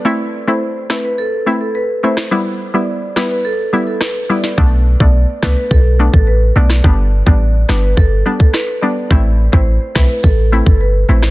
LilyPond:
<<
  \new Staff \with { instrumentName = "Marimba" } { \time 4/4 \key a \dorian \tempo 4 = 106 r8. c''16 r8 b'16 b'16 a'16 r8 a'16 b'16 r16 c''16 r16 | r8. d''16 r8 b'16 b'16 a'16 r8 a'16 r8 d''16 r16 | r8. d''16 r8 b'16 b'16 a'16 r8 a'16 b'16 r16 d''16 r16 | r8. d''16 r8 b'16 b'16 a'16 r8 a'16 b'16 r16 d''16 r16 |
r8. c''16 r8 b'16 b'16 a'16 r8 a'16 b'16 r16 c''16 r16 | }
  \new Staff \with { instrumentName = "Synth pluck" } { \time 4/4 \key a \dorian <a c' e'>8. <a c' e'>8. <a c' e'>8 r8 <a c' e'>16 r8. <a c' e'>16 r16 | <g b e'>8. <g b e'>8. <g b e'>8 r8 <g b e'>16 r8. <g b e'>16 r16 | <a b d'>8. <a b d'>8. <a b d'>8 r8 <a b d'>16 r8. <a b d'>16 r16 | <g b d'>8. <g b d'>8. <g b d'>8 r8 <g b d'>16 r8. <g b d'>16 r16 |
<a c' e'>8. <a c' e'>8. <a c' e'>8 r8 <a c' e'>16 r8. <a c' e'>16 r16 | }
  \new Staff \with { instrumentName = "808-style bass" } { \clef bass \time 4/4 \key a \dorian r1 | r1 | b,,8. b,,8 r16 c,16 r16 b,,8. a,,8. b,,8 | g,,8. a,,8. g,,8 g,,8 r4. |
a,,8. a,,8 r16 b,,16 r16 a,,8. g,,8. a,,8 | }
  \new DrumStaff \with { instrumentName = "Drums" } \drummode { \time 4/4 r4 r8 <ss sn>8 r4 r8. <ss sn>16 | r4 r8 <ss sn>8 r4 <ss sn>8. sn16 | bd8. bd16 r8 <bd ss sn>8 bd8. bd16 r8. <ss sn>16 | bd8. bd16 r8 <ss sn>8 bd8. bd16 <ss sn>4 |
bd8. bd16 r8 <bd ss sn>8 bd8. bd16 r8. <ss sn>16 | }
>>